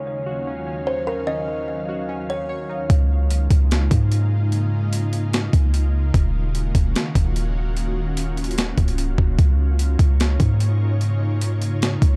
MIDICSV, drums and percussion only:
0, 0, Header, 1, 2, 480
1, 0, Start_track
1, 0, Key_signature, -5, "major"
1, 0, Tempo, 405405
1, 1513, Time_signature, 4, 2, 24, 8
1, 14401, End_track
2, 0, Start_track
2, 0, Title_t, "Drums"
2, 3432, Note_on_c, 9, 36, 115
2, 3434, Note_on_c, 9, 42, 62
2, 3551, Note_off_c, 9, 36, 0
2, 3552, Note_off_c, 9, 42, 0
2, 3913, Note_on_c, 9, 42, 85
2, 4031, Note_off_c, 9, 42, 0
2, 4150, Note_on_c, 9, 36, 96
2, 4151, Note_on_c, 9, 42, 67
2, 4269, Note_off_c, 9, 36, 0
2, 4269, Note_off_c, 9, 42, 0
2, 4395, Note_on_c, 9, 42, 73
2, 4404, Note_on_c, 9, 38, 119
2, 4514, Note_off_c, 9, 42, 0
2, 4522, Note_off_c, 9, 38, 0
2, 4630, Note_on_c, 9, 36, 99
2, 4633, Note_on_c, 9, 42, 72
2, 4748, Note_off_c, 9, 36, 0
2, 4751, Note_off_c, 9, 42, 0
2, 4873, Note_on_c, 9, 42, 78
2, 4991, Note_off_c, 9, 42, 0
2, 5353, Note_on_c, 9, 42, 62
2, 5472, Note_off_c, 9, 42, 0
2, 5833, Note_on_c, 9, 42, 85
2, 5951, Note_off_c, 9, 42, 0
2, 6071, Note_on_c, 9, 42, 68
2, 6190, Note_off_c, 9, 42, 0
2, 6315, Note_on_c, 9, 42, 72
2, 6324, Note_on_c, 9, 38, 118
2, 6434, Note_off_c, 9, 42, 0
2, 6442, Note_off_c, 9, 38, 0
2, 6550, Note_on_c, 9, 36, 96
2, 6553, Note_on_c, 9, 42, 69
2, 6669, Note_off_c, 9, 36, 0
2, 6672, Note_off_c, 9, 42, 0
2, 6794, Note_on_c, 9, 42, 75
2, 6912, Note_off_c, 9, 42, 0
2, 7273, Note_on_c, 9, 36, 119
2, 7273, Note_on_c, 9, 42, 63
2, 7391, Note_off_c, 9, 36, 0
2, 7392, Note_off_c, 9, 42, 0
2, 7752, Note_on_c, 9, 42, 82
2, 7871, Note_off_c, 9, 42, 0
2, 7990, Note_on_c, 9, 36, 101
2, 7991, Note_on_c, 9, 42, 70
2, 8109, Note_off_c, 9, 36, 0
2, 8109, Note_off_c, 9, 42, 0
2, 8235, Note_on_c, 9, 42, 75
2, 8243, Note_on_c, 9, 38, 121
2, 8353, Note_off_c, 9, 42, 0
2, 8362, Note_off_c, 9, 38, 0
2, 8470, Note_on_c, 9, 36, 95
2, 8473, Note_on_c, 9, 42, 73
2, 8589, Note_off_c, 9, 36, 0
2, 8592, Note_off_c, 9, 42, 0
2, 8714, Note_on_c, 9, 42, 78
2, 8832, Note_off_c, 9, 42, 0
2, 9194, Note_on_c, 9, 42, 64
2, 9313, Note_off_c, 9, 42, 0
2, 9673, Note_on_c, 9, 42, 86
2, 9792, Note_off_c, 9, 42, 0
2, 9914, Note_on_c, 9, 42, 58
2, 9994, Note_off_c, 9, 42, 0
2, 9994, Note_on_c, 9, 42, 57
2, 10073, Note_off_c, 9, 42, 0
2, 10073, Note_on_c, 9, 42, 60
2, 10156, Note_off_c, 9, 42, 0
2, 10156, Note_on_c, 9, 42, 74
2, 10164, Note_on_c, 9, 38, 116
2, 10274, Note_off_c, 9, 42, 0
2, 10283, Note_off_c, 9, 38, 0
2, 10391, Note_on_c, 9, 36, 98
2, 10393, Note_on_c, 9, 42, 59
2, 10509, Note_off_c, 9, 36, 0
2, 10511, Note_off_c, 9, 42, 0
2, 10513, Note_on_c, 9, 42, 59
2, 10632, Note_off_c, 9, 42, 0
2, 10634, Note_on_c, 9, 42, 81
2, 10753, Note_off_c, 9, 42, 0
2, 10872, Note_on_c, 9, 36, 92
2, 10991, Note_off_c, 9, 36, 0
2, 11113, Note_on_c, 9, 36, 115
2, 11114, Note_on_c, 9, 42, 62
2, 11232, Note_off_c, 9, 36, 0
2, 11232, Note_off_c, 9, 42, 0
2, 11594, Note_on_c, 9, 42, 87
2, 11712, Note_off_c, 9, 42, 0
2, 11831, Note_on_c, 9, 36, 96
2, 11833, Note_on_c, 9, 42, 67
2, 11950, Note_off_c, 9, 36, 0
2, 11951, Note_off_c, 9, 42, 0
2, 12077, Note_on_c, 9, 42, 74
2, 12085, Note_on_c, 9, 38, 113
2, 12195, Note_off_c, 9, 42, 0
2, 12204, Note_off_c, 9, 38, 0
2, 12311, Note_on_c, 9, 36, 99
2, 12315, Note_on_c, 9, 42, 70
2, 12430, Note_off_c, 9, 36, 0
2, 12433, Note_off_c, 9, 42, 0
2, 12555, Note_on_c, 9, 42, 74
2, 12673, Note_off_c, 9, 42, 0
2, 13035, Note_on_c, 9, 42, 64
2, 13154, Note_off_c, 9, 42, 0
2, 13515, Note_on_c, 9, 42, 86
2, 13633, Note_off_c, 9, 42, 0
2, 13753, Note_on_c, 9, 42, 69
2, 13871, Note_off_c, 9, 42, 0
2, 13996, Note_on_c, 9, 42, 74
2, 14005, Note_on_c, 9, 38, 114
2, 14115, Note_off_c, 9, 42, 0
2, 14123, Note_off_c, 9, 38, 0
2, 14231, Note_on_c, 9, 36, 96
2, 14234, Note_on_c, 9, 42, 72
2, 14350, Note_off_c, 9, 36, 0
2, 14353, Note_off_c, 9, 42, 0
2, 14401, End_track
0, 0, End_of_file